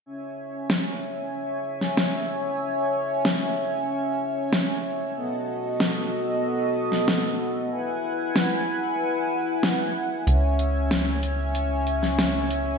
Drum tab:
HH |----------------|----------------|----------------|----------------|
SD |----o------oo---|----o-------o---|----o------oo---|----o-------o---|

HH |x-x-x-x-x-x-x-x-|
SD |----o------oo---|